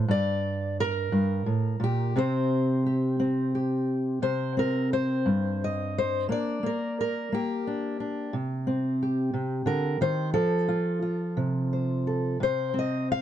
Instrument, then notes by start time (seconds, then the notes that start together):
steel-string acoustic guitar
0.08 G2 D5
0.80 A#4
1.12 G2
1.46 A2
1.80 A#2 G4
2.16 C3 C4 G4 C5
2.86 G4
3.20 C4
3.55 G4
4.22 C3 C5
4.57 C4 A#4
4.93 C5
5.26 G2
5.64 D#5
5.98 C5
6.29 A#3 D4 D5
6.63 A#3 A#4
7.01 A#4
7.32 A#3 G4
7.67 D4
8.00 D4
8.33 C3
8.67 C4
9.03 G4
9.34 C3
9.66 D3 A#4
10.01 D#3 C5
10.34 F3 A4
10.68 F4
11.02 F4
11.37 C3
11.73 C5
12.07 A4
12.40 C3 C5
12.74 C4
12.79 D#5
13.12 F5